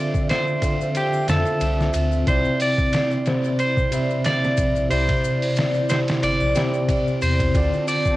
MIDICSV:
0, 0, Header, 1, 7, 480
1, 0, Start_track
1, 0, Tempo, 659341
1, 1655, Time_signature, 4, 2, 24, 8
1, 5945, End_track
2, 0, Start_track
2, 0, Title_t, "Clean electric guitar"
2, 0, Program_c, 0, 27
2, 0, Note_on_c, 0, 74, 104
2, 216, Note_off_c, 0, 74, 0
2, 219, Note_on_c, 0, 72, 104
2, 705, Note_on_c, 0, 67, 86
2, 712, Note_off_c, 0, 72, 0
2, 940, Note_off_c, 0, 67, 0
2, 943, Note_on_c, 0, 69, 83
2, 1390, Note_off_c, 0, 69, 0
2, 1658, Note_on_c, 0, 72, 109
2, 1903, Note_off_c, 0, 72, 0
2, 1906, Note_on_c, 0, 74, 113
2, 2615, Note_off_c, 0, 74, 0
2, 2618, Note_on_c, 0, 72, 99
2, 3095, Note_off_c, 0, 72, 0
2, 3098, Note_on_c, 0, 74, 110
2, 3568, Note_off_c, 0, 74, 0
2, 3571, Note_on_c, 0, 72, 112
2, 4284, Note_off_c, 0, 72, 0
2, 4292, Note_on_c, 0, 72, 85
2, 4358, Note_off_c, 0, 72, 0
2, 4540, Note_on_c, 0, 74, 108
2, 5255, Note_off_c, 0, 74, 0
2, 5258, Note_on_c, 0, 72, 92
2, 5736, Note_off_c, 0, 72, 0
2, 5739, Note_on_c, 0, 74, 98
2, 5945, Note_off_c, 0, 74, 0
2, 5945, End_track
3, 0, Start_track
3, 0, Title_t, "Synth texture"
3, 0, Program_c, 1, 99
3, 5499, Note_on_c, 1, 60, 80
3, 5499, Note_on_c, 1, 81, 86
3, 5945, Note_off_c, 1, 60, 0
3, 5945, Note_off_c, 1, 81, 0
3, 5945, End_track
4, 0, Start_track
4, 0, Title_t, "Analog synth pad"
4, 0, Program_c, 2, 89
4, 0, Note_on_c, 2, 60, 82
4, 0, Note_on_c, 2, 65, 71
4, 0, Note_on_c, 2, 76, 85
4, 1623, Note_off_c, 2, 65, 0
4, 1633, Note_off_c, 2, 76, 0
4, 1647, Note_on_c, 2, 74, 94
4, 1651, Note_on_c, 2, 64, 79
4, 5462, Note_off_c, 2, 74, 0
4, 5464, Note_off_c, 2, 64, 0
4, 5493, Note_on_c, 2, 74, 86
4, 5494, Note_on_c, 2, 65, 72
4, 5945, Note_off_c, 2, 60, 0
4, 5945, Note_off_c, 2, 65, 0
4, 5945, Note_off_c, 2, 74, 0
4, 5945, End_track
5, 0, Start_track
5, 0, Title_t, "Tine electric piano"
5, 0, Program_c, 3, 4
5, 0, Control_c, 3, 64, 127
5, 0, Note_on_c, 3, 50, 90
5, 0, Note_on_c, 3, 60, 76
5, 0, Note_on_c, 3, 65, 80
5, 0, Note_on_c, 3, 74, 98
5, 0, Note_on_c, 3, 76, 86
5, 424, Note_off_c, 3, 50, 0
5, 427, Note_off_c, 3, 60, 0
5, 431, Note_off_c, 3, 65, 0
5, 436, Note_off_c, 3, 74, 0
5, 451, Note_on_c, 3, 50, 78
5, 453, Note_on_c, 3, 60, 71
5, 459, Note_on_c, 3, 65, 72
5, 466, Note_on_c, 3, 72, 86
5, 907, Note_off_c, 3, 50, 0
5, 908, Note_off_c, 3, 60, 0
5, 911, Note_off_c, 3, 65, 0
5, 914, Note_off_c, 3, 72, 0
5, 926, Note_on_c, 3, 50, 71
5, 937, Note_on_c, 3, 60, 70
5, 946, Note_on_c, 3, 65, 68
5, 953, Note_off_c, 3, 76, 0
5, 953, Note_on_c, 3, 76, 85
5, 1625, Note_off_c, 3, 50, 0
5, 1630, Note_off_c, 3, 60, 0
5, 1634, Note_off_c, 3, 65, 0
5, 1638, Note_off_c, 3, 76, 0
5, 1644, Note_on_c, 3, 48, 81
5, 1652, Note_on_c, 3, 60, 80
5, 1664, Note_on_c, 3, 64, 75
5, 1665, Control_c, 3, 64, 0
5, 1670, Note_on_c, 3, 74, 94
5, 1783, Control_c, 3, 64, 127
5, 2344, Note_off_c, 3, 48, 0
5, 2347, Note_off_c, 3, 60, 0
5, 2353, Note_off_c, 3, 64, 0
5, 2357, Note_off_c, 3, 74, 0
5, 2375, Note_on_c, 3, 48, 77
5, 2379, Note_on_c, 3, 60, 70
5, 2385, Note_on_c, 3, 64, 69
5, 2386, Note_on_c, 3, 72, 94
5, 2829, Note_off_c, 3, 48, 0
5, 2831, Note_off_c, 3, 60, 0
5, 2834, Note_off_c, 3, 64, 0
5, 2835, Note_off_c, 3, 72, 0
5, 2845, Note_on_c, 3, 48, 81
5, 2856, Note_on_c, 3, 60, 69
5, 2861, Note_on_c, 3, 64, 71
5, 2871, Note_on_c, 3, 76, 86
5, 3544, Note_off_c, 3, 48, 0
5, 3550, Note_off_c, 3, 60, 0
5, 3552, Note_off_c, 3, 64, 0
5, 3557, Note_off_c, 3, 76, 0
5, 3563, Note_on_c, 3, 48, 88
5, 3571, Note_on_c, 3, 60, 79
5, 3580, Note_on_c, 3, 64, 80
5, 3589, Note_on_c, 3, 74, 97
5, 4263, Note_off_c, 3, 48, 0
5, 4267, Note_off_c, 3, 60, 0
5, 4272, Note_off_c, 3, 64, 0
5, 4276, Note_off_c, 3, 74, 0
5, 4293, Note_on_c, 3, 48, 79
5, 4296, Note_on_c, 3, 60, 74
5, 4303, Note_on_c, 3, 64, 70
5, 4306, Note_on_c, 3, 72, 87
5, 4748, Note_off_c, 3, 48, 0
5, 4750, Note_off_c, 3, 60, 0
5, 4753, Note_off_c, 3, 64, 0
5, 4755, Note_off_c, 3, 72, 0
5, 4766, Note_on_c, 3, 48, 103
5, 4776, Note_on_c, 3, 60, 96
5, 4784, Note_on_c, 3, 64, 92
5, 4793, Note_on_c, 3, 74, 106
5, 5465, Note_off_c, 3, 48, 0
5, 5470, Note_off_c, 3, 60, 0
5, 5473, Note_off_c, 3, 64, 0
5, 5478, Note_off_c, 3, 74, 0
5, 5487, Note_on_c, 3, 50, 85
5, 5495, Note_on_c, 3, 60, 81
5, 5505, Control_c, 3, 64, 0
5, 5505, Note_on_c, 3, 65, 74
5, 5512, Note_on_c, 3, 74, 99
5, 5618, Control_c, 3, 64, 127
5, 5945, Note_off_c, 3, 50, 0
5, 5945, Note_off_c, 3, 60, 0
5, 5945, Note_off_c, 3, 65, 0
5, 5945, Note_off_c, 3, 74, 0
5, 5945, End_track
6, 0, Start_track
6, 0, Title_t, "Sub bass"
6, 0, Program_c, 4, 38
6, 932, Note_on_c, 4, 41, 89
6, 1049, Note_off_c, 4, 41, 0
6, 1173, Note_on_c, 4, 36, 98
6, 1388, Note_off_c, 4, 36, 0
6, 1418, Note_on_c, 4, 38, 104
6, 1630, Note_off_c, 4, 38, 0
6, 1652, Note_on_c, 4, 36, 101
6, 1769, Note_off_c, 4, 36, 0
6, 3333, Note_on_c, 4, 34, 81
6, 3548, Note_off_c, 4, 34, 0
6, 3577, Note_on_c, 4, 36, 101
6, 3692, Note_off_c, 4, 36, 0
6, 4533, Note_on_c, 4, 31, 85
6, 4650, Note_off_c, 4, 31, 0
6, 4668, Note_on_c, 4, 34, 96
6, 4763, Note_off_c, 4, 34, 0
6, 5259, Note_on_c, 4, 40, 102
6, 5471, Note_off_c, 4, 40, 0
6, 5494, Note_on_c, 4, 38, 99
6, 5610, Note_off_c, 4, 38, 0
6, 5945, End_track
7, 0, Start_track
7, 0, Title_t, "Drums"
7, 104, Note_on_c, 9, 36, 96
7, 107, Note_on_c, 9, 82, 39
7, 177, Note_off_c, 9, 36, 0
7, 180, Note_off_c, 9, 82, 0
7, 213, Note_on_c, 9, 51, 77
7, 223, Note_on_c, 9, 82, 50
7, 226, Note_on_c, 9, 38, 111
7, 286, Note_off_c, 9, 51, 0
7, 296, Note_off_c, 9, 82, 0
7, 298, Note_off_c, 9, 38, 0
7, 347, Note_on_c, 9, 82, 26
7, 419, Note_off_c, 9, 82, 0
7, 450, Note_on_c, 9, 51, 72
7, 451, Note_on_c, 9, 36, 94
7, 458, Note_on_c, 9, 82, 89
7, 523, Note_off_c, 9, 51, 0
7, 524, Note_off_c, 9, 36, 0
7, 531, Note_off_c, 9, 82, 0
7, 589, Note_on_c, 9, 82, 36
7, 662, Note_off_c, 9, 82, 0
7, 689, Note_on_c, 9, 51, 81
7, 693, Note_on_c, 9, 82, 50
7, 762, Note_off_c, 9, 51, 0
7, 766, Note_off_c, 9, 82, 0
7, 823, Note_on_c, 9, 81, 60
7, 826, Note_on_c, 9, 82, 26
7, 896, Note_off_c, 9, 81, 0
7, 899, Note_off_c, 9, 82, 0
7, 931, Note_on_c, 9, 51, 69
7, 936, Note_on_c, 9, 82, 84
7, 943, Note_on_c, 9, 38, 124
7, 1004, Note_off_c, 9, 51, 0
7, 1008, Note_off_c, 9, 82, 0
7, 1016, Note_off_c, 9, 38, 0
7, 1061, Note_on_c, 9, 82, 37
7, 1133, Note_off_c, 9, 82, 0
7, 1170, Note_on_c, 9, 82, 53
7, 1173, Note_on_c, 9, 51, 91
7, 1243, Note_off_c, 9, 82, 0
7, 1246, Note_off_c, 9, 51, 0
7, 1315, Note_on_c, 9, 82, 26
7, 1316, Note_on_c, 9, 38, 42
7, 1388, Note_off_c, 9, 82, 0
7, 1389, Note_off_c, 9, 38, 0
7, 1410, Note_on_c, 9, 82, 82
7, 1411, Note_on_c, 9, 51, 72
7, 1482, Note_off_c, 9, 82, 0
7, 1484, Note_off_c, 9, 51, 0
7, 1543, Note_on_c, 9, 82, 42
7, 1615, Note_off_c, 9, 82, 0
7, 1652, Note_on_c, 9, 36, 111
7, 1652, Note_on_c, 9, 51, 90
7, 1656, Note_on_c, 9, 82, 51
7, 1725, Note_off_c, 9, 36, 0
7, 1725, Note_off_c, 9, 51, 0
7, 1728, Note_off_c, 9, 82, 0
7, 1780, Note_on_c, 9, 82, 24
7, 1852, Note_off_c, 9, 82, 0
7, 1891, Note_on_c, 9, 46, 83
7, 1894, Note_on_c, 9, 82, 84
7, 1964, Note_off_c, 9, 46, 0
7, 1967, Note_off_c, 9, 82, 0
7, 2025, Note_on_c, 9, 36, 99
7, 2026, Note_on_c, 9, 82, 38
7, 2097, Note_off_c, 9, 36, 0
7, 2099, Note_off_c, 9, 82, 0
7, 2132, Note_on_c, 9, 51, 81
7, 2132, Note_on_c, 9, 82, 45
7, 2144, Note_on_c, 9, 38, 109
7, 2204, Note_off_c, 9, 82, 0
7, 2205, Note_off_c, 9, 51, 0
7, 2217, Note_off_c, 9, 38, 0
7, 2266, Note_on_c, 9, 82, 27
7, 2338, Note_off_c, 9, 82, 0
7, 2372, Note_on_c, 9, 51, 80
7, 2372, Note_on_c, 9, 82, 89
7, 2384, Note_on_c, 9, 38, 108
7, 2445, Note_off_c, 9, 51, 0
7, 2445, Note_off_c, 9, 82, 0
7, 2457, Note_off_c, 9, 38, 0
7, 2508, Note_on_c, 9, 82, 40
7, 2581, Note_off_c, 9, 82, 0
7, 2613, Note_on_c, 9, 51, 64
7, 2617, Note_on_c, 9, 82, 48
7, 2686, Note_off_c, 9, 51, 0
7, 2690, Note_off_c, 9, 82, 0
7, 2745, Note_on_c, 9, 36, 86
7, 2748, Note_on_c, 9, 82, 25
7, 2818, Note_off_c, 9, 36, 0
7, 2821, Note_off_c, 9, 82, 0
7, 2853, Note_on_c, 9, 51, 80
7, 2856, Note_on_c, 9, 82, 84
7, 2926, Note_off_c, 9, 51, 0
7, 2929, Note_off_c, 9, 82, 0
7, 2987, Note_on_c, 9, 82, 34
7, 3059, Note_off_c, 9, 82, 0
7, 3090, Note_on_c, 9, 51, 81
7, 3093, Note_on_c, 9, 82, 51
7, 3102, Note_on_c, 9, 38, 112
7, 3163, Note_off_c, 9, 51, 0
7, 3166, Note_off_c, 9, 82, 0
7, 3175, Note_off_c, 9, 38, 0
7, 3231, Note_on_c, 9, 82, 26
7, 3237, Note_on_c, 9, 38, 49
7, 3304, Note_off_c, 9, 82, 0
7, 3310, Note_off_c, 9, 38, 0
7, 3328, Note_on_c, 9, 82, 81
7, 3332, Note_on_c, 9, 36, 103
7, 3332, Note_on_c, 9, 51, 78
7, 3401, Note_off_c, 9, 82, 0
7, 3405, Note_off_c, 9, 36, 0
7, 3405, Note_off_c, 9, 51, 0
7, 3463, Note_on_c, 9, 82, 41
7, 3536, Note_off_c, 9, 82, 0
7, 3572, Note_on_c, 9, 46, 73
7, 3573, Note_on_c, 9, 82, 57
7, 3645, Note_off_c, 9, 46, 0
7, 3646, Note_off_c, 9, 82, 0
7, 3704, Note_on_c, 9, 36, 90
7, 3704, Note_on_c, 9, 51, 78
7, 3706, Note_on_c, 9, 82, 25
7, 3776, Note_off_c, 9, 36, 0
7, 3776, Note_off_c, 9, 51, 0
7, 3778, Note_off_c, 9, 82, 0
7, 3817, Note_on_c, 9, 82, 89
7, 3889, Note_off_c, 9, 82, 0
7, 3947, Note_on_c, 9, 46, 74
7, 3949, Note_on_c, 9, 82, 40
7, 4020, Note_off_c, 9, 46, 0
7, 4022, Note_off_c, 9, 82, 0
7, 4047, Note_on_c, 9, 82, 51
7, 4054, Note_on_c, 9, 51, 80
7, 4066, Note_on_c, 9, 38, 116
7, 4120, Note_off_c, 9, 82, 0
7, 4127, Note_off_c, 9, 51, 0
7, 4139, Note_off_c, 9, 38, 0
7, 4178, Note_on_c, 9, 82, 25
7, 4251, Note_off_c, 9, 82, 0
7, 4290, Note_on_c, 9, 82, 92
7, 4293, Note_on_c, 9, 51, 77
7, 4306, Note_on_c, 9, 38, 102
7, 4362, Note_off_c, 9, 82, 0
7, 4366, Note_off_c, 9, 51, 0
7, 4378, Note_off_c, 9, 38, 0
7, 4426, Note_on_c, 9, 82, 34
7, 4427, Note_on_c, 9, 51, 82
7, 4439, Note_on_c, 9, 38, 110
7, 4499, Note_off_c, 9, 51, 0
7, 4499, Note_off_c, 9, 82, 0
7, 4512, Note_off_c, 9, 38, 0
7, 4536, Note_on_c, 9, 51, 90
7, 4538, Note_on_c, 9, 82, 51
7, 4609, Note_off_c, 9, 51, 0
7, 4611, Note_off_c, 9, 82, 0
7, 4662, Note_on_c, 9, 81, 59
7, 4664, Note_on_c, 9, 82, 26
7, 4734, Note_off_c, 9, 81, 0
7, 4737, Note_off_c, 9, 82, 0
7, 4771, Note_on_c, 9, 82, 76
7, 4773, Note_on_c, 9, 51, 72
7, 4786, Note_on_c, 9, 38, 113
7, 4844, Note_off_c, 9, 82, 0
7, 4846, Note_off_c, 9, 51, 0
7, 4858, Note_off_c, 9, 38, 0
7, 4905, Note_on_c, 9, 82, 37
7, 4978, Note_off_c, 9, 82, 0
7, 5013, Note_on_c, 9, 36, 96
7, 5014, Note_on_c, 9, 51, 81
7, 5017, Note_on_c, 9, 82, 48
7, 5086, Note_off_c, 9, 36, 0
7, 5087, Note_off_c, 9, 51, 0
7, 5090, Note_off_c, 9, 82, 0
7, 5149, Note_on_c, 9, 82, 24
7, 5222, Note_off_c, 9, 82, 0
7, 5255, Note_on_c, 9, 82, 83
7, 5256, Note_on_c, 9, 46, 74
7, 5328, Note_off_c, 9, 82, 0
7, 5329, Note_off_c, 9, 46, 0
7, 5384, Note_on_c, 9, 82, 41
7, 5386, Note_on_c, 9, 36, 92
7, 5388, Note_on_c, 9, 51, 78
7, 5457, Note_off_c, 9, 82, 0
7, 5458, Note_off_c, 9, 36, 0
7, 5461, Note_off_c, 9, 51, 0
7, 5493, Note_on_c, 9, 36, 100
7, 5493, Note_on_c, 9, 82, 49
7, 5495, Note_on_c, 9, 51, 86
7, 5565, Note_off_c, 9, 82, 0
7, 5566, Note_off_c, 9, 36, 0
7, 5568, Note_off_c, 9, 51, 0
7, 5630, Note_on_c, 9, 82, 22
7, 5703, Note_off_c, 9, 82, 0
7, 5737, Note_on_c, 9, 46, 78
7, 5737, Note_on_c, 9, 82, 98
7, 5810, Note_off_c, 9, 46, 0
7, 5810, Note_off_c, 9, 82, 0
7, 5863, Note_on_c, 9, 82, 43
7, 5865, Note_on_c, 9, 36, 98
7, 5936, Note_off_c, 9, 82, 0
7, 5938, Note_off_c, 9, 36, 0
7, 5945, End_track
0, 0, End_of_file